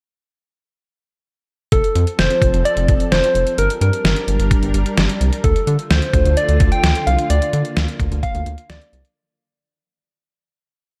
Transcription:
1.72 1.82 F1 loud
1.72 3.56 F3 medium
1.72 3.56 C4 medium
1.72 3.56 A4 medium
1.72 2.20 A4 loud
1.72 kick loud
1.72 closed hi-hat medium
1.84 closed hi-hat medium
1.95 2.05 F2 loud
1.95 closed hi-hat medium
2.07 closed hi-hat soft
2.19 2.28 F1 medium
2.19 2.67 C5 loud
2.19 snare loud
2.19 closed hi-hat medium
2.30 closed hi-hat medium
2.42 2.51 F1 medium
2.42 kick medium
2.42 closed hi-hat medium
2.54 2.63 F1 medium
2.54 closed hi-hat medium
2.65 3.13 D5 loud
2.65 closed hi-hat medium
2.77 2.86 F1 medium
2.77 closed hi-hat medium
2.88 2.98 F1 loud
2.88 kick loud
2.88 closed hi-hat medium
3.00 closed hi-hat medium
3.11 3.21 F1 loud
3.11 3.60 C5 loud
3.11 snare loud
3.11 closed hi-hat medium
3.24 closed hi-hat medium
3.35 3.44 F1 medium
3.35 closed hi-hat medium
3.47 closed hi-hat soft
3.58 3.68 G1 loud
3.58 5.42 G3 medium
3.58 5.42 D4 medium
3.58 5.42 A#4 medium
3.58 3.81 A#4 loud
3.58 closed hi-hat medium
3.70 closed hi-hat medium
3.81 3.91 G2 loud
3.81 4.71 A#4 medium
3.81 closed hi-hat medium
3.93 closed hi-hat soft
4.04 4.14 G1 loud
4.04 snare loud
4.04 closed hi-hat medium
4.16 closed hi-hat medium
4.28 4.37 G1 loud
4.28 closed hi-hat medium
4.39 4.49 G1 loud
4.39 closed hi-hat medium
4.51 kick medium
4.51 closed hi-hat medium
4.63 4.72 G1 medium
4.63 closed hi-hat soft
4.74 4.84 G1 medium
4.74 closed hi-hat medium
4.86 closed hi-hat medium
4.97 5.07 G1 loud
4.97 snare loud
4.97 closed hi-hat medium
5.09 closed hi-hat medium
5.21 5.30 C2 loud
5.21 closed hi-hat medium
5.33 closed hi-hat medium
5.44 5.54 D2 loud
5.44 9.12 D3 medium
5.44 7.28 A3 medium
5.44 9.13 F4 medium
5.44 5.87 A4 medium
5.44 kick loud
5.44 closed hi-hat medium
5.56 closed hi-hat medium
5.67 5.77 D3 medium
5.67 closed hi-hat medium
5.79 closed hi-hat soft
5.91 6.00 D2 loud
5.91 6.39 C5 medium
5.91 snare loud
5.91 closed hi-hat medium
6.02 closed hi-hat medium
6.13 6.23 D2 medium
6.13 kick medium
6.13 closed hi-hat medium
6.25 6.35 D2 loud
6.25 closed hi-hat medium
6.37 6.71 D5 loud
6.37 closed hi-hat medium
6.49 6.58 D2 loud
6.49 closed hi-hat medium
6.60 6.70 D2 medium
6.60 kick loud
6.60 closed hi-hat medium
6.72 7.08 G5 loud
6.72 closed hi-hat medium
6.83 6.93 D2 loud
6.83 snare loud
6.83 closed hi-hat medium
6.95 closed hi-hat medium
7.07 7.16 C2 medium
7.07 7.32 F5 loud
7.07 closed hi-hat medium
7.19 closed hi-hat medium
7.30 7.40 D2 loud
7.30 9.14 A#3 medium
7.30 8.00 D5 loud
7.30 closed hi-hat medium
7.42 closed hi-hat medium
7.53 7.63 D3 medium
7.53 closed hi-hat medium
7.65 closed hi-hat soft
7.77 7.86 D2 loud
7.77 snare loud
7.77 closed hi-hat medium
7.88 closed hi-hat medium
8.00 8.09 D2 loud
8.00 kick medium
8.00 closed hi-hat medium
8.11 8.21 D2 loud
8.11 closed hi-hat medium
8.23 8.71 F5 loud
8.23 kick medium
8.23 closed hi-hat medium
8.35 8.44 D2 loud
8.35 closed hi-hat medium
8.46 8.56 D2 loud
8.46 closed hi-hat medium
8.58 closed hi-hat medium
8.69 8.79 D2 loud
8.69 9.05 D5 loud
8.69 snare loud
8.69 closed hi-hat medium
8.81 closed hi-hat medium
8.93 9.02 C2 medium
8.93 closed hi-hat medium
9.05 closed hi-hat medium

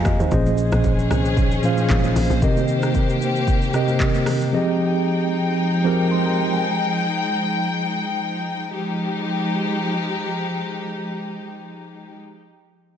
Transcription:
0.00 0.32 F3 medium
0.00 0.34 C4 medium
0.00 0.33 G4 medium
0.00 0.33 G#4 medium
0.00 0.07 D#5 loud
0.00 0.33 F5 medium
0.00 0.34 G#5 medium
0.00 0.33 A#5 medium
0.05 0.19 F2 medium
0.05 0.20 D#5 medium
0.05 kick medium
0.05 cross-stick loud
0.05 low conga medium
0.05 shaker medium
0.20 0.31 D#2 medium
0.20 0.32 C5 medium
0.20 shaker medium
0.31 0.71 A#1 loud
0.31 1.17 A#2 medium
0.31 4.49 D#3 medium
0.31 1.17 F3 medium
0.31 2.40 C#4 medium
0.31 1.17 C#4 medium
0.31 2.40 G#4 loud
0.31 1.17 G#4 medium
0.31 4.49 C5 medium
0.31 1.17 C5 medium
0.31 1.18 D#5 loud
0.31 kick loud
0.31 low conga medium
0.31 shaker medium
0.46 high conga medium
0.46 shaker soft
0.58 shaker medium
0.72 1.09 A#1 loud
0.72 cross-stick loud
0.72 high conga medium
0.72 shaker medium
0.84 kick loud
0.84 low conga medium
0.84 shaker medium
0.99 shaker medium
1.10 1.61 C2 medium
1.10 cross-stick loud
1.10 high conga medium
1.10 shaker loud
1.25 shaker soft
1.37 kick loud
1.37 shaker medium
1.51 shaker medium
1.63 2.27 A#2 medium
1.63 2.28 F3 medium
1.63 2.28 C#4 medium
1.63 2.28 G#4 medium
1.63 2.28 C5 medium
1.63 2.28 F5 loud
1.63 shaker loud
1.77 high conga medium
1.77 shaker medium
1.89 2.15 G#1 loud
1.89 kick loud
1.89 clap loud
1.89 low conga medium
1.89 shaker medium
2.03 high conga medium
2.03 shaker medium
2.16 2.30 A#1 medium
2.16 open hi-hat medium
2.16 low conga medium
2.16 shaker medium
2.30 2.42 A#1 medium
2.30 shaker soft
2.42 3.27 C3 medium
2.42 4.51 A#3 medium
2.42 3.27 C4 medium
2.42 4.51 G4 loud
2.42 3.27 G4 medium
2.42 3.28 A#4 medium
2.42 3.28 D#5 loud
2.42 kick loud
2.42 low conga medium
2.42 shaker medium
2.57 high conga medium
2.57 shaker soft
2.68 shaker medium
2.82 cross-stick medium
2.82 high conga medium
2.82 shaker medium
2.95 kick medium
2.95 low conga medium
2.95 shaker medium
3.10 shaker medium
3.21 high conga medium
3.21 shaker loud
3.36 shaker soft
3.48 kick loud
3.48 shaker medium
3.62 shaker medium
3.73 4.38 C3 loud
3.73 4.38 C4 medium
3.73 4.38 G4 medium
3.73 4.39 A#4 medium
3.73 4.39 D#5 loud
3.73 cross-stick medium
3.73 shaker loud
3.88 high conga medium
3.88 shaker soft
4.00 kick loud
4.00 clap loud
4.00 low conga medium
4.00 shaker medium
4.14 high conga medium
4.14 shaker medium
4.26 cross-stick loud
4.26 open hi-hat medium
4.26 low conga medium
4.26 shaker medium
4.41 shaker medium
4.52 5.37 F3 medium
4.52 8.70 F3 medium
4.52 8.70 G#3 medium
4.52 5.38 C4 medium
4.52 8.70 D#4 medium
4.52 5.38 G4 medium
4.52 5.38 G#4 medium
4.52 5.38 D#5 loud
4.52 8.70 G5 medium
5.84 6.48 F3 loud
5.84 6.49 C4 medium
5.84 6.49 G4 medium
5.84 6.49 G#4 medium
5.84 6.49 A#4 loud
6.11 6.25 C6 medium
6.26 6.51 A#5 medium
6.52 6.77 G#5 medium
8.74 12.18 F3 medium
8.74 12.18 G#3 medium
8.74 12.18 D#4 medium
8.74 12.18 G4 loud

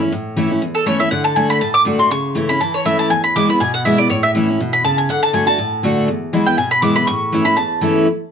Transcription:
0.00 0.10 E2 medium
0.00 0.12 C#4 medium
0.00 0.12 E4 medium
0.12 0.60 A2 loud
0.36 0.49 E3 medium
0.36 0.50 A3 medium
0.36 0.50 C#4 loud
0.36 0.48 E4 loud
0.50 0.62 C#4 medium
0.50 0.61 E4 medium
0.62 1.09 E2 medium
0.75 0.86 A4 medium
0.86 0.99 E3 medium
0.86 0.99 A3 medium
0.86 1.00 C#4 loud
0.86 0.99 E4 medium
0.86 0.99 C#5 medium
1.00 1.12 C#4 medium
1.00 1.11 E4 medium
1.00 1.11 E5 loud
1.11 1.35 D3 medium
1.11 1.24 F#5 medium
1.24 1.36 A5 loud
1.36 1.60 D3 medium
1.36 1.60 A3 medium
1.36 1.61 D4 loud
1.36 1.61 F#4 loud
1.36 1.49 G#5 loud
1.50 1.61 B5 loud
1.61 2.09 A2 medium
1.61 1.74 A5 medium
1.74 1.81 D6 loud
1.85 1.98 D3 loud
1.85 1.99 A3 medium
1.85 1.99 D4 loud
1.85 1.98 F#4 loud
1.99 2.11 D4 soft
1.99 2.11 F#4 medium
1.99 2.11 C6 loud
2.11 2.58 C#3 medium
2.11 2.47 C#6 loud
2.35 2.48 E3 medium
2.35 2.48 A3 loud
2.35 2.49 C#4 loud
2.35 2.48 E4 loud
2.49 2.61 C#4 soft
2.49 2.60 E4 medium
2.49 2.60 B5 loud
2.61 2.84 E3 medium
2.61 2.74 A5 medium
2.74 2.85 C#5 medium
2.85 3.09 E3 medium
2.85 3.10 A3 medium
2.85 3.10 C#4 loud
2.85 3.10 E4 loud
2.85 2.99 E5 medium
2.99 3.10 A5 loud
3.10 3.58 E2 medium
3.10 3.23 G#5 loud
3.24 3.35 B5 loud
3.36 3.48 E3 medium
3.36 3.49 G#3 loud
3.36 3.49 B3 medium
3.36 3.48 E4 loud
3.36 3.49 D6 loud
3.49 3.61 B3 soft
3.49 3.60 E4 medium
3.49 3.60 B5 loud
3.60 4.08 B2 medium
3.60 3.73 G#5 loud
3.74 3.85 F#5 loud
3.85 3.98 E3 medium
3.85 3.98 G#3 loud
3.85 3.99 B3 medium
3.85 3.97 E4 loud
3.85 3.98 E5 medium
3.98 4.11 B3 soft
3.98 4.10 E4 medium
3.98 4.09 D5 medium
4.10 4.57 A2 loud
4.10 4.23 C#5 medium
4.23 4.30 E5 loud
4.35 4.48 E3 medium
4.35 4.48 A3 medium
4.35 4.48 C#4 medium
4.35 4.47 E4 loud
4.48 4.60 C#4 medium
4.48 4.59 E4 medium
4.60 4.84 B2 medium
4.73 4.84 B5 loud
4.84 5.08 C#3 medium
4.84 4.97 A5 loud
4.98 5.09 G#5 loud
5.09 5.32 D3 medium
5.09 5.22 F#5 loud
5.23 5.33 A5 loud
5.33 5.46 D3 medium
5.33 5.47 A3 medium
5.33 5.47 D4 medium
5.33 5.45 F#4 medium
5.33 5.46 G#5 loud
5.46 5.59 D4 soft
5.46 5.58 F#4 medium
5.46 6.04 A5 loud
5.58 6.06 A2 medium
5.83 6.07 D3 medium
5.83 6.08 A3 medium
5.83 6.08 D4 loud
5.83 6.08 F#4 loud
6.08 6.56 E2 medium
6.33 6.46 E3 medium
6.33 6.46 G#3 medium
6.33 6.46 B3 medium
6.33 6.45 E4 loud
6.46 6.58 B3 soft
6.46 6.58 E4 medium
6.46 6.57 G5 loud
6.58 7.06 B2 medium
6.58 6.71 G#5 loud
6.71 6.82 B5 loud
6.82 6.95 E3 medium
6.82 6.96 G#3 medium
6.82 6.96 B3 loud
6.82 6.94 E4 loud
6.82 6.95 D6 loud
6.96 7.08 B3 medium
6.96 7.07 E4 medium
6.96 7.07 B5 loud
7.07 7.55 A2 loud
7.07 7.43 C#6 loud
7.32 7.45 E3 medium
7.32 7.46 A3 medium
7.32 7.46 C#4 medium
7.32 7.44 E4 loud
7.45 7.58 C#4 medium
7.45 7.57 E4 medium
7.45 7.56 B5 loud
7.57 8.05 E2 medium
7.57 7.98 A5 medium
7.81 8.06 E3 medium
7.81 8.06 A3 loud
7.81 8.06 C#4 loud
7.81 8.07 E4 loud

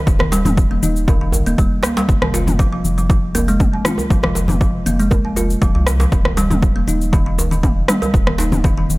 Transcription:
0.07 0.77 D#1 medium
0.07 0.19 D#3 medium
0.07 kick loud
0.07 cabasa soft
0.19 cross-stick medium
0.19 djembe tone medium
0.19 high conga medium
0.32 0.39 G3 loud
0.32 djembe slap medium
0.32 cabasa medium
0.45 0.56 G3 medium
0.45 mid tom medium
0.45 high conga medium
0.45 low conga loud
0.45 cabasa medium
0.57 kick loud
0.57 cabasa soft
0.71 0.81 A#3 medium
0.71 high conga medium
0.83 1.32 D#1 medium
0.83 0.95 D#4 medium
0.83 high conga medium
0.83 cabasa medium
0.96 cabasa medium
1.08 1.20 D#3 loud
1.08 kick loud
1.08 djembe tone medium
1.08 cabasa soft
1.21 1.28 D#3 medium
1.32 1.42 G1 loud
1.32 djembe tone medium
1.32 cabasa loud
1.46 1.55 D#1 medium
1.46 1.57 A#3 loud
1.46 cabasa medium
1.58 1.67 D#1 medium
1.58 1.70 G3 medium
1.58 kick loud
1.58 cabasa soft
1.83 1.96 A#3 loud
1.83 cross-stick medium
1.83 djembe slap medium
1.83 cabasa medium
1.97 2.08 G3 loud
1.97 djembe slap medium
1.97 cabasa medium
2.09 2.78 F1 medium
2.09 kick loud
2.09 cabasa soft
2.22 2.33 C3 medium
2.22 cross-stick medium
2.22 djembe tone medium
2.22 high conga medium
2.34 2.46 F4 medium
2.34 djembe slap medium
2.34 cabasa medium
2.47 mid tom medium
2.47 high conga medium
2.47 low conga medium
2.47 cabasa medium
2.59 2.71 F3 loud
2.59 kick loud
2.59 cabasa soft
2.72 2.79 F3 medium
2.84 3.79 F1 medium
2.84 high conga medium
2.84 cabasa medium
2.98 3.08 F3 medium
2.98 cabasa medium
3.10 3.22 F3 medium
3.10 kick loud
3.10 cabasa soft
3.35 3.42 A#3 loud
3.35 djembe tone medium
3.35 cabasa medium
3.48 3.59 G#3 medium
3.48 cabasa medium
3.60 kick medium
3.60 mid tom medium
3.60 cabasa soft
3.73 3.84 C3 medium
3.85 3.97 F4 medium
3.85 cross-stick medium
3.85 mid tom medium
3.85 high conga medium
3.85 cabasa medium
3.98 djembe tone medium
3.98 cabasa medium
4.10 4.80 F1 loud
4.10 4.23 F3 loud
4.10 kick loud
4.10 cabasa soft
4.23 4.30 F3 medium
4.23 cross-stick medium
4.23 djembe tone medium
4.23 high conga medium
4.35 djembe slap medium
4.35 cabasa medium
4.48 4.60 F3 medium
4.48 mid tom medium
4.48 high conga medium
4.48 low conga loud
4.48 cabasa soft
4.61 4.73 F3 medium
4.61 kick loud
4.61 cabasa soft
4.86 5.56 F1 medium
4.86 4.93 A#3 loud
4.86 high conga medium
4.86 cabasa medium
4.99 5.10 G#3 medium
4.99 cabasa medium
5.11 kick loud
5.11 djembe tone medium
5.11 cabasa soft
5.25 5.35 C3 medium
5.36 5.48 F4 medium
5.36 djembe tone medium
5.36 cabasa medium
5.50 cabasa soft
5.62 5.71 D#1 medium
5.62 5.74 F3 loud
5.62 kick loud
5.62 cabasa soft
5.75 6.06 C2 medium
5.75 5.81 F3 medium
5.87 cross-stick medium
5.87 djembe slap medium
5.87 cabasa medium
6.00 6.11 F3 medium
6.00 djembe slap medium
6.00 cabasa soft
6.12 6.82 D#1 loud
6.12 6.24 D#3 medium
6.12 kick loud
6.12 cabasa soft
6.25 cross-stick medium
6.25 djembe tone medium
6.25 high conga medium
6.37 6.44 G3 loud
6.37 djembe slap medium
6.37 cabasa medium
6.50 6.61 G3 medium
6.50 mid tom medium
6.50 high conga medium
6.50 low conga medium
6.50 cabasa soft
6.63 kick loud
6.63 cabasa soft
6.76 6.86 A#3 medium
6.87 7.83 D#1 medium
6.87 7.00 D#4 medium
6.87 high conga medium
6.87 cabasa medium
7.01 cabasa soft
7.13 7.25 D#3 loud
7.13 kick loud
7.13 cabasa soft
7.26 7.33 D#3 medium
7.38 djembe tone medium
7.38 cabasa medium
7.51 7.62 D#3 medium
7.51 high conga medium
7.51 cabasa medium
7.63 7.75 D#3 medium
7.63 kick medium
7.63 mid tom medium
7.63 cabasa soft
7.88 7.96 G3 loud
7.88 cross-stick medium
7.88 mid tom loud
7.88 cabasa medium
8.02 8.13 G3 medium
8.02 djembe tone medium
8.02 cabasa medium
8.14 8.84 D#1 loud
8.14 kick loud
8.14 cabasa soft
8.27 8.38 A#3 medium
8.27 cross-stick medium
8.27 djembe tone medium
8.27 high conga medium
8.38 8.51 D#4 medium
8.38 djembe slap medium
8.38 cabasa medium
8.52 mid tom loud
8.52 high conga medium
8.52 low conga loud
8.52 cabasa medium
8.64 8.76 D#3 loud
8.64 kick loud
8.64 cabasa soft
8.77 8.84 D#3 medium
8.77 high conga medium
8.89 8.98 D#1 medium
8.89 high conga medium
8.89 cabasa medium

